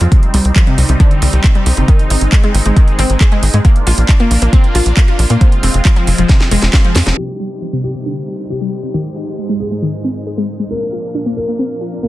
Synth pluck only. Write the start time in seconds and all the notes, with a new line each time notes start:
0.01 F3
0.12 C3
0.34 G3
0.56 F3
0.67 C3
0.89 C3
1.00 D3
1.22 G3
1.44 C3
1.55 G3
1.77 C3
1.88 D#3
2.10 D#4
2.33 G#3
2.44 G#3
2.66 G#3
2.77 D#3
2.99 C4
3.21 G#4
3.32 G#3
3.54 G#3
3.65 A#3
3.87 F4
4.09 D4
4.20 A#3
4.42 A#3
4.53 C4
4.75 F4
4.97 A#3
5.08 F4
5.30 A#3
5.41 C3
5.63 C4
5.85 F3
5.96 F3
6.18 F3
6.29 C3
6.51 G#3
6.73 F4
6.84 F3
7.07 F3
7.18 C3
7.40 G3
7.62 F3
7.73 C3
7.95 C3
8.06 D3
8.28 G3
8.50 C3
8.61 G3
8.83 C3
8.94 D#3
9.16 D#4
9.38 G#3
9.49 G#3
9.71 G#3
9.82 D#3
10.04 C4
10.26 G#4
10.37 G#3
10.59 G#3
10.70 A#3
10.93 F4
11.15 D4
11.26 A#3
11.48 A#3
11.59 C4
11.81 F4
12.03 A#3